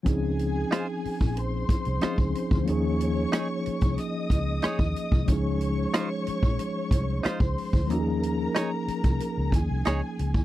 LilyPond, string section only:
\new Staff \with { instrumentName = "String section" } { \time 4/4 \key des \major \tempo 4 = 92 <aes' aes''>2 <c'' c'''>2 | <des'' des'''>2 <ees'' ees'''>2 | <des'' des'''>2. <c'' c'''>4 | <bes' bes''>2~ <bes' bes''>8 <aes' aes''>4. | }